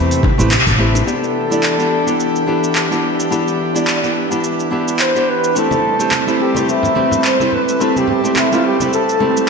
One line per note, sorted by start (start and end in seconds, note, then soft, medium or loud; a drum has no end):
0.00 0.30 E2 medium
0.00 1.03 C3 medium
0.00 0.20 A3 medium
0.00 1.03 A3 medium
0.00 0.20 C4 medium
0.00 0.20 E4 medium
0.00 0.21 G4 medium
0.00 1.03 G4 medium
0.00 0.21 B4 medium
0.11 open hi-hat soft
0.11 cabasa soft
0.23 kick loud
0.23 high bongo medium
0.23 high conga medium
0.38 0.56 A1 medium
0.38 0.50 A3 medium
0.38 0.51 C4 medium
0.38 0.51 E4 medium
0.38 0.51 G4 medium
0.38 0.51 B4 loud
0.38 open hi-hat soft
0.38 cabasa medium
0.51 clap loud
0.51 open hi-hat medium
0.51 high bongo medium
0.51 cabasa medium
0.67 1.00 A1 loud
0.67 kick medium
0.67 open hi-hat soft
0.67 high conga medium
0.67 cabasa soft
0.78 1.04 A3 medium
0.78 1.04 C4 medium
0.78 1.04 E4 medium
0.78 1.05 G4 medium
0.78 1.05 B4 loud
0.95 open hi-hat soft
0.95 high bongo medium
0.95 cabasa medium
1.06 5.52 E3 medium
1.06 1.47 B3 medium
1.06 1.47 D4 medium
1.06 5.52 D4 medium
1.06 1.47 E4 medium
1.06 1.47 G4 medium
1.06 5.52 G4 medium
1.06 3.01 A4 loud
1.06 1.48 B4 medium
1.06 cabasa soft
1.24 cabasa soft
1.50 1.75 B3 medium
1.50 1.75 D4 medium
1.50 1.75 E4 medium
1.50 1.76 G4 medium
1.50 1.76 D5 medium
1.50 cabasa medium
1.63 clap medium
1.63 cabasa soft
1.78 2.03 B3 medium
1.78 2.03 D4 medium
1.78 2.03 E4 medium
1.78 2.04 G4 medium
1.78 2.04 B4 medium
1.78 cabasa soft
2.06 2.44 B3 medium
2.06 2.44 D4 medium
2.06 2.45 E4 medium
2.06 2.45 G4 medium
2.06 2.45 B4 medium
2.06 cabasa medium
2.20 cabasa soft
2.36 cabasa soft
2.47 2.87 B3 medium
2.47 2.87 D4 medium
2.47 2.88 E4 medium
2.47 2.88 G4 medium
2.47 2.88 B4 medium
2.64 cabasa medium
2.75 clap medium
2.75 cabasa soft
2.91 3.28 B3 medium
2.91 3.29 D4 medium
2.91 3.29 E4 medium
2.91 3.29 G4 medium
2.91 3.29 B4 medium
2.91 cabasa soft
3.20 cabasa medium
3.31 3.71 B3 medium
3.31 3.71 D4 medium
3.31 3.72 E4 medium
3.31 3.72 G4 medium
3.31 3.72 B4 medium
3.31 cabasa medium
3.48 cabasa soft
3.74 3.99 B3 medium
3.74 3.99 D4 medium
3.74 3.99 E4 medium
3.74 4.00 G4 medium
3.74 4.00 D5 medium
3.74 cabasa medium
3.87 clap medium
3.87 cabasa soft
4.02 4.27 B3 medium
4.02 4.28 D4 medium
4.02 4.28 E4 medium
4.02 4.28 G4 medium
4.02 4.28 B4 medium
4.02 cabasa soft
4.30 4.68 B3 medium
4.30 4.69 D4 medium
4.30 4.69 E4 medium
4.30 4.69 G4 medium
4.30 4.69 B4 medium
4.30 cabasa medium
4.44 cabasa soft
4.60 cabasa soft
4.71 5.11 B3 medium
4.71 5.12 D4 medium
4.71 5.12 E4 medium
4.71 5.12 G4 medium
4.71 5.12 B4 medium
4.88 cabasa medium
4.99 5.30 C5 loud
4.99 clap medium
4.99 cabasa soft
5.15 5.52 B3 medium
5.15 5.53 D4 medium
5.15 5.53 E4 medium
5.15 5.53 G4 medium
5.15 5.53 B4 medium
5.15 cabasa soft
5.29 5.56 B4 medium
5.44 cabasa medium
5.55 9.49 G3 medium
5.55 5.96 A3 medium
5.55 5.96 C4 medium
5.55 9.49 C4 medium
5.55 5.96 E4 medium
5.55 5.96 G4 medium
5.55 9.49 A4 medium
5.55 6.43 A4 loud
5.55 5.96 B4 medium
5.55 cabasa medium
5.71 high bongo medium
5.71 high conga medium
5.71 cabasa soft
5.99 6.24 A3 medium
5.99 6.24 C4 medium
5.99 6.24 E4 medium
5.99 6.25 G4 medium
5.99 6.25 C5 medium
5.99 high bongo soft
5.99 cabasa medium
6.11 clap medium
6.11 high conga medium
6.11 cabasa medium
6.27 6.52 A3 medium
6.27 6.52 C4 medium
6.27 6.52 E4 medium
6.27 6.52 G4 medium
6.27 6.52 B4 medium
6.27 cabasa soft
6.40 6.69 G4 medium
6.40 high bongo medium
6.55 6.93 A3 medium
6.55 6.93 C4 medium
6.55 6.93 E4 medium
6.55 6.94 G4 medium
6.55 6.94 B4 medium
6.55 high conga medium
6.55 cabasa medium
6.67 7.21 E4 medium
6.67 high bongo soft
6.67 cabasa soft
6.83 low conga medium
6.83 cabasa soft
6.95 7.36 A3 medium
6.95 7.36 C4 medium
6.95 7.36 E4 medium
6.95 7.36 G4 medium
6.95 7.37 B4 medium
6.95 high conga medium
7.11 high bongo medium
7.11 low conga medium
7.11 cabasa medium
7.24 7.55 C5 medium
7.24 clap medium
7.24 cabasa medium
7.40 7.77 A3 medium
7.40 7.77 C4 medium
7.40 7.78 E4 medium
7.40 7.78 G4 medium
7.40 7.78 B4 medium
7.40 high bongo soft
7.40 high conga medium
7.40 cabasa soft
7.52 7.83 B4 medium
7.52 low conga medium
7.69 cabasa medium
7.80 8.20 A3 medium
7.80 8.20 C4 medium
7.80 8.21 E4 medium
7.80 8.21 G4 medium
7.80 7.99 A4 medium
7.80 8.21 B4 medium
7.80 high bongo medium
7.80 cabasa soft
7.96 8.09 G4 medium
7.96 high conga medium
7.96 cabasa soft
8.07 8.40 G4 medium
8.07 high bongo soft
8.07 low conga medium
8.24 8.48 A3 medium
8.24 8.48 C4 medium
8.24 8.49 E4 medium
8.24 8.49 G4 medium
8.24 8.49 C5 medium
8.24 cabasa medium
8.36 8.55 E4 medium
8.36 clap medium
8.36 high conga medium
8.36 cabasa soft
8.52 8.76 A3 medium
8.52 8.77 C4 medium
8.52 8.77 E4 medium
8.52 8.65 F4 medium
8.52 8.77 G4 medium
8.52 8.77 B4 medium
8.52 high bongo medium
8.52 cabasa soft
8.66 8.91 G4 medium
8.80 9.18 A3 medium
8.80 9.18 C4 medium
8.80 9.18 E4 medium
8.80 9.18 G4 medium
8.80 9.18 B4 medium
8.80 high bongo soft
8.80 high conga medium
8.80 cabasa medium
8.93 9.49 A4 medium
8.93 cabasa soft
9.09 cabasa soft
9.20 9.49 A3 medium
9.20 9.49 C4 medium
9.20 9.49 E4 medium
9.20 9.49 G4 medium
9.20 9.49 B4 medium
9.20 high bongo medium
9.20 high conga medium
9.37 cabasa medium